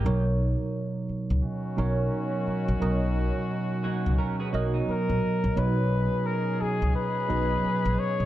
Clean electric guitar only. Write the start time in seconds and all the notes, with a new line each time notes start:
Already playing: A#3 G4
3.84 A#3 F#4
4.18 C#4 A#4
4.40 B3 G#4
4.53 A#3 F#4
4.74 F#3 D#4